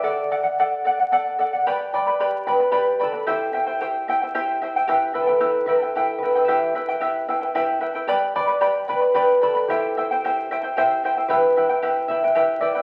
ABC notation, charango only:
X:1
M:6/8
L:1/16
Q:3/8=75
K:Em
V:1 name="Charango"
[Adf]2 [Adf] [df] [Adf]2 [Adf] [df] [Adf]2 [Adf] [df] | [GBdgb]2 [Bdgb] [Bdb] [GBdgb]2 [Bdgb] [Bdb] [GBdgb]2 [Bdgb] [Bdb] | [EGceg]2 [Eceg] [Ecg] [EGceg]2 [Eceg] [Ecg] [EGceg]2 [Eceg] [Ecg] | [EGBeg]2 [EBeg] [EBg] [EGBeg]2 [EBeg] [EBg] [EGBeg]2 [EBeg] [EBg] |
[EGBeg]2 [EBeg] [EBg] [EGBeg]2 [EBeg] [EBg] [EGBeg]2 [EBeg] [EBg] | [GBdgb]2 [Bdgb] [Bdb] [GBdgb]2 [Bdgb] [Bdb] [GBdgb]2 [Bdgb] [Bdb] | [EGceg]2 [Eceg] [Ecg] [EGceg]2 [Eceg] [Ecg] [EGceg]2 [Eceg] [Ecg] | [EGBeg]2 [EBeg] [EBg] [EGBeg]2 [EBeg] [EBg] [EGBeg]2 [EBeg] [EBg] |]